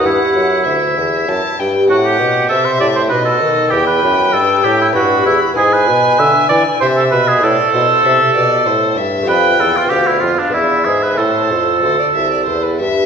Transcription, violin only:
X:1
M:3/4
L:1/16
Q:1/4=97
K:Em
V:1 name="Violin"
f4 e4 a2 g2 | f4 e4 ^d4 | g8 b4 | [K:Am] ^g8 e4 |
d2 c2 e2 d2 c2 e2 | g4 f4 e4 | c4 c d e d c B e2 |]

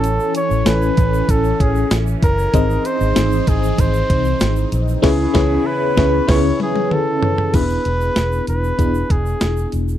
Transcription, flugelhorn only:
X:1
M:4/4
L:1/8
Q:1/4=96
K:A
V:1 name="Flugelhorn"
A c B2 A G z ^A- | ^A ^B2 G B3 z | G2 B2 c G A2 | B3 B2 G2 z |]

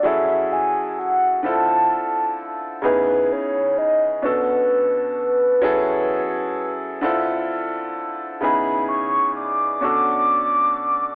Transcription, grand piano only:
X:1
M:6/8
L:1/8
Q:3/8=43
K:C#phr
V:1 name="Grand piano"
[F,CEGA]2 z [D,=CE=FA]2 z | [C,B,^DEG]2 z [B,,C=DFA]2 z | [F,CEGA]2 z [D,=CE=FA]2 z | [C,B,^DEG]2 z [B,,C=DFA]2 z |]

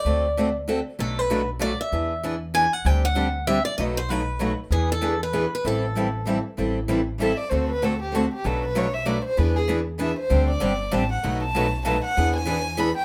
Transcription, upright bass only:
X:1
M:3/4
L:1/8
Q:"Swing" 1/4=193
K:Ador
V:1 name="Upright bass" clef=bass
D,,6 | B,,,6 | E,,6 | D,,6 |
B,,,6 | E,,6 | A,,,6 | A,,,6 |
D,,6 | B,,,6 | E,,6 | D,,2 G,,,2 A,,,2 |
B,,,6 | E,,6 |]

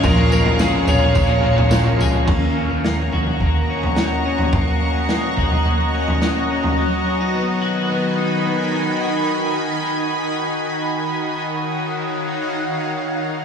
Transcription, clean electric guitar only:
X:1
M:4/4
L:1/16
Q:1/4=107
K:Ebm
V:1 name="Clean electric guitar"
[F,B,DA]2 B,2 D2 A2 B,2 D2 B,2 A2 | B,2 D2 B,2 G2 B,2 D2 B,2 D2 | B,2 D2 B,2 G2 B,2 D2 B,2 D2 | G,2 D E C2 G2 C2 E2 C2 E2 |
z16 | z16 |]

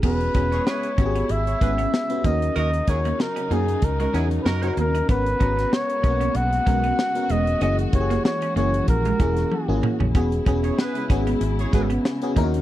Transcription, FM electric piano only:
X:1
M:4/4
L:1/16
Q:"Swing 16ths" 1/4=95
K:Elyd
V:1 name="FM electric piano"
[B,CFG]2 [B,CFG]3 z [B,CF=G^G]3 z [B,CFG]2 z [B,CFB] [CDFA]2- | [CDFA] z [CDFA]3 z [CDFA]3 z [CDFA]2 z [CDFA]2 z | [B,CFA]2 [B,CFa]3 z [A,B,CFA]3 z [B,CFA]2 z [B,CFA]2 z | [A,CEG]2 [A,CE=G^G]3 z [A,CEG]3 z [A,CEG]2 z [A,CEG]2 z |
[B,CFG]2 [B,CFG]3 z [B,CFG]3 z [B,CFG]2 z [B,CFG] [CDEFA]2 |]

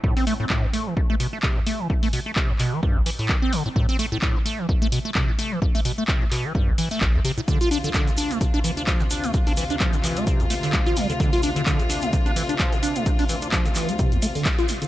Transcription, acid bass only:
X:1
M:4/4
L:1/16
Q:"Swing 16ths" 1/4=129
K:Am
V:1 name="Acid bass" clef=bass
A,, C A, A,, A,, G,, A, E, G,, A, B,, A, C, G,, A, E, | G,, A, B,, A, C, G,, B,, E, G,, A,,, E, A,, E, C D, A,, | A,, C A, A,, A,, G,, A, E, G,, A, B,, A, C, G,, A, E, | G,, A, B,, A, C, G,, B,, E, G,, A,,, E, A, A,,, G,, C, A,, |
D, F D D, D, C, D A, C, D E, D F, C, D A, | C, D E, D F, C, E, A, C, D,, A, D, A, F G, D, | D, F D D, D, C, D A, C, D E, D F, C, D A, | C, D E, D F, C, E, A, C, D,, A, D, A, F G, D, |]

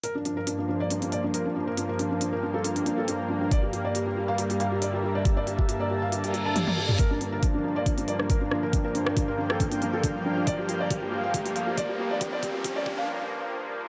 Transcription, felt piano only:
X:1
M:4/4
L:1/16
Q:"Swing 16ths" 1/4=138
K:Gdor
V:1 name="Felt piano"
B D D B D D D d D D d D B D D B | D B D D D B D A D D D A D z D D | d G G d G G G f G G f G d G G d | G d G G G d G f G G G a G z G G |
B D D B D D D d D D d D B D D B | D B D D D B D A D D D A D z D D | d G G d G G G f G G f G d G G d | G d G G G d G f z8 |]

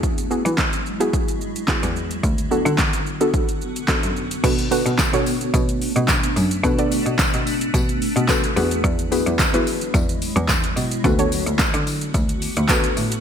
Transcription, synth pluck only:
X:1
M:4/4
L:1/16
Q:1/4=109
K:Bdor
V:1 name="Synth pluck"
[B,EFG] z [B,EFG]3 z2 [B,EFG]3 z2 [B,EFG]3 z | z2 [B,DFA]3 z2 [B,DFA]3 z2 [B,DFA]3 z | [B,DFAB] z [B,DFAB]2 z [B,DFAc]4 z6 z | [B,DFAB] [B,DFAd]4 z6 z [B,DFAB]2 [B,EFGB]2- |
[B,EFGB] z [B,EFGB]2 z [B,EFGB]4 z6 z | [B,DFAB] [B,DFAc]4 z6 z [B,DFAB]2 z2 |]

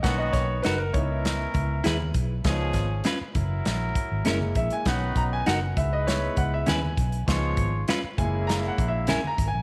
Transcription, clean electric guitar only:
X:1
M:4/4
L:1/8
Q:1/4=100
K:C#dor
V:1 name="Clean electric guitar"
z2 [DFA] z3 [EGB] z | z2 [C^EB] z3 [C=EA] z | z2 [DFA] z3 [CEB] z | z2 [C^EB] z3 [C=EA] z |]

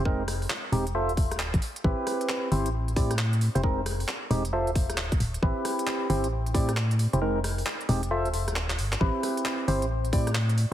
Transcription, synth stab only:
X:1
M:4/4
L:1/16
Q:"Swing 16ths" 1/4=134
K:Am
V:1 name="Synth stab"
[_A,C_E_B] z4 z [A,CEG] z [F=Ac=e] z6 z | [CEGB]6 [CEGc] z3 [CEGd] z4 [CEGc] | [_A,C_E_B] z4 z [A,CEG] z [F=Ac=e] z6 z | [CEGB]6 [CEGc] z3 [CEGd] z4 [CEGc] |
[_A,C_E_B] z4 z [A,CEG] z [F=Ac=e] z6 z | [CEGB]6 [CEGc] z3 [CEGd] z4 z |]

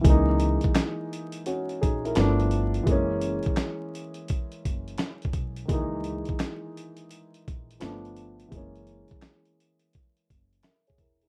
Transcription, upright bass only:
X:1
M:4/4
L:1/16
Q:"Swing 16ths" 1/4=85
K:C#dor
V:1 name="Upright bass" clef=bass
C,,3 z6 z A,,,2 =G,,,4 | F,,,3 z6 z F,,,2 z2 B,,,2 | C,,3 z6 z A,,,2 =G,,,4 | F,,,3 z6 z F,,,2 z2 E,,,2 |]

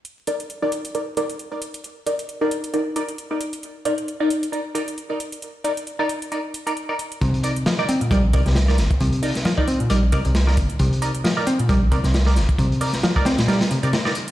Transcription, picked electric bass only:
X:1
M:4/4
L:1/16
Q:"Swing 16ths" 1/4=134
K:Cm
V:1 name="Picked electric bass" clef=bass
z16 | z16 | z16 | z16 |
C,4 F, z C B,, G, z C, C, z4 | C,4 F, z C B,, G, z C, C, z4 | C,4 F, z C B,, G, z C, C, z4 | C,4 F, z C B,, G, z C, C, z4 |]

